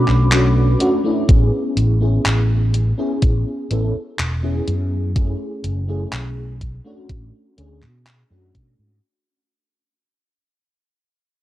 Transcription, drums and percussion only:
0.08 clap
0.32 clap, closed hi-hat
0.80 closed hi-hat
1.29 kick, closed hi-hat
1.77 closed hi-hat
2.26 clap, closed hi-hat
2.74 closed hi-hat
3.22 kick, closed hi-hat
3.71 closed hi-hat
4.19 clap, closed hi-hat
4.68 closed hi-hat
5.16 kick, closed hi-hat
5.64 closed hi-hat
6.13 clap, closed hi-hat
6.61 kick, closed hi-hat
7.09 kick, closed hi-hat
7.58 closed hi-hat
7.82 clap
8.07 clap, closed hi-hat
8.55 kick, closed hi-hat

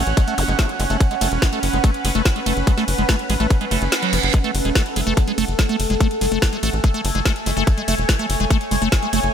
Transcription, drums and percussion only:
0.07 closed hi-hat
0.17 kick, closed hi-hat, ride
0.28 closed hi-hat
0.38 open hi-hat, ride
0.48 closed hi-hat
0.59 kick, snare, closed hi-hat, ride
0.69 closed hi-hat
0.80 open hi-hat, ride
0.90 closed hi-hat
1.00 kick, closed hi-hat, ride
1.11 closed hi-hat
1.21 open hi-hat, ride
1.32 closed hi-hat
1.42 kick, snare, closed hi-hat, ride
1.53 closed hi-hat
1.63 open hi-hat, ride
1.73 closed hi-hat
1.84 kick, closed hi-hat, ride
1.94 closed hi-hat
2.05 open hi-hat, ride
2.15 closed hi-hat
2.25 kick, snare, closed hi-hat, ride
2.36 closed hi-hat
2.46 open hi-hat, ride
2.57 closed hi-hat
2.67 kick, closed hi-hat, ride
2.78 snare, closed hi-hat
2.88 open hi-hat, ride
2.98 closed hi-hat
3.09 kick, snare, closed hi-hat, ride
3.19 closed hi-hat
3.30 open hi-hat, ride
3.40 closed hi-hat
3.50 kick, closed hi-hat, ride
3.61 closed hi-hat
3.71 open hi-hat, ride
3.82 closed hi-hat
3.92 snare, closed hi-hat, ride
4.03 closed hi-hat
4.13 open hi-hat, ride
4.23 closed hi-hat
4.34 kick, closed hi-hat, ride
4.44 closed hi-hat
4.55 open hi-hat, ride
4.65 closed hi-hat
4.75 kick, snare, closed hi-hat, ride
4.86 closed hi-hat
4.96 open hi-hat, ride
5.07 closed hi-hat
5.17 kick, closed hi-hat, ride
5.28 closed hi-hat
5.38 open hi-hat, ride
5.48 closed hi-hat
5.59 kick, snare, closed hi-hat, ride
5.69 closed hi-hat
5.80 open hi-hat, ride
5.90 closed hi-hat
6.00 kick, closed hi-hat, ride
6.11 closed hi-hat
6.21 open hi-hat, ride
6.32 closed hi-hat
6.42 kick, snare, closed hi-hat, ride
6.53 closed hi-hat
6.63 open hi-hat, ride
6.73 closed hi-hat
6.84 kick, closed hi-hat, ride
6.94 closed hi-hat
7.05 open hi-hat, ride
7.15 closed hi-hat
7.25 kick, snare, closed hi-hat, ride
7.36 closed hi-hat
7.46 open hi-hat, ride
7.57 closed hi-hat
7.67 kick, closed hi-hat, ride
7.78 closed hi-hat
7.88 open hi-hat, ride
7.98 closed hi-hat
8.09 kick, snare, closed hi-hat, ride
8.19 closed hi-hat
8.30 open hi-hat, ride
8.40 closed hi-hat
8.50 kick, closed hi-hat, ride
8.61 closed hi-hat
8.71 open hi-hat, ride
8.82 closed hi-hat
8.92 kick, snare, closed hi-hat, ride
9.03 closed hi-hat
9.13 open hi-hat, ride
9.23 closed hi-hat

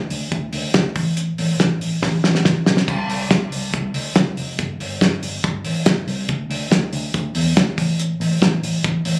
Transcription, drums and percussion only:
0.10 open hi-hat
0.32 kick, closed hi-hat
0.53 open hi-hat
0.74 kick, snare, closed hi-hat
0.96 kick, open hi-hat
1.17 closed hi-hat
1.38 open hi-hat
1.60 kick, snare, closed hi-hat
1.81 open hi-hat
2.02 kick, snare
2.24 snare
2.35 snare
2.45 kick, snare
2.66 snare
2.77 snare
2.88 kick, crash
3.10 open hi-hat
3.31 kick, snare, closed hi-hat
3.52 open hi-hat
3.74 kick, closed hi-hat
3.94 open hi-hat
4.15 kick, snare, closed hi-hat
4.37 open hi-hat
4.59 kick, closed hi-hat
4.80 open hi-hat
5.01 kick, snare, closed hi-hat
5.23 open hi-hat
5.44 kick, closed hi-hat
5.65 open hi-hat
5.86 kick, snare, closed hi-hat
6.08 open hi-hat
6.29 kick, closed hi-hat
6.51 open hi-hat
6.71 kick, snare, closed hi-hat
6.93 open hi-hat
7.14 kick, closed hi-hat
7.35 open hi-hat
7.57 kick, snare, closed hi-hat
7.78 kick, open hi-hat
7.99 closed hi-hat
8.21 open hi-hat
8.42 kick, snare, closed hi-hat
8.63 open hi-hat
8.84 kick, closed hi-hat
9.05 open hi-hat

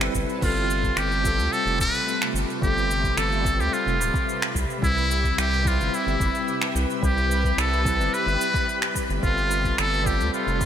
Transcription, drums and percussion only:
0.01 finger snap, shaker
0.15 kick, shaker
0.29 shaker
0.42 kick, crash, shaker
0.57 shaker
0.70 shaker
0.84 kick, shaker
0.97 finger snap, shaker
1.12 shaker
1.25 kick, shaker
1.39 shaker
1.53 shaker
1.67 shaker
1.80 kick, shaker
1.95 shaker
2.08 shaker
2.22 finger snap, shaker
2.36 shaker
2.50 shaker
2.62 kick, shaker
2.78 shaker
2.91 shaker
3.04 kick, shaker
3.17 finger snap, shaker
3.32 shaker
3.45 kick, shaker
3.60 shaker
3.73 shaker
3.88 shaker
4.01 shaker
4.14 kick, shaker
4.29 shaker
4.42 finger snap, shaker
4.55 kick, shaker
4.70 shaker
4.83 kick, shaker
4.98 shaker
5.11 shaker
5.24 kick, shaker
5.38 finger snap, shaker
5.53 shaker
5.65 kick, shaker
5.81 shaker
5.94 shaker
6.08 shaker
6.20 kick, shaker
6.35 shaker
6.48 shaker
6.62 finger snap, shaker
6.76 shaker
6.90 shaker
7.03 kick, shaker
7.18 shaker
7.31 shaker
7.44 kick, shaker
7.58 finger snap, shaker
7.73 shaker
7.85 kick, shaker
8.01 shaker
8.14 shaker
8.28 shaker
8.41 shaker
8.54 kick, shaker
8.69 shaker
8.82 finger snap, shaker
8.95 kick, shaker
9.10 shaker
9.23 kick, shaker
9.38 shaker
9.51 shaker
9.65 kick, shaker
9.78 finger snap, shaker
9.93 shaker
10.06 kick, shaker
10.20 shaker
10.34 shaker
10.48 shaker
10.61 kick, shaker

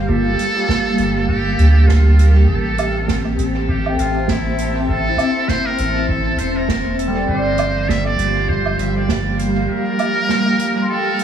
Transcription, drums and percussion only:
0.09 kick
0.39 closed hi-hat
0.69 kick, snare
0.98 closed hi-hat
1.29 kick
1.59 closed hi-hat
1.89 kick, snare
2.19 closed hi-hat
2.49 kick
2.78 closed hi-hat, low woodblock
3.08 kick, snare
3.39 closed hi-hat
3.69 kick
3.86 low woodblock
3.99 closed hi-hat
4.28 kick, snare
4.58 closed hi-hat
4.89 kick
5.18 closed hi-hat, low woodblock
5.48 kick, snare
5.78 closed hi-hat
6.09 kick
6.38 closed hi-hat
6.69 kick, snare
6.99 closed hi-hat
7.29 kick
7.58 closed hi-hat, low woodblock
7.89 kick, snare
8.19 closed hi-hat
8.49 kick
8.66 low woodblock
8.79 closed hi-hat
9.09 kick, snare
9.39 closed hi-hat
9.99 closed hi-hat, low woodblock
10.29 snare
10.59 closed hi-hat
11.19 closed hi-hat

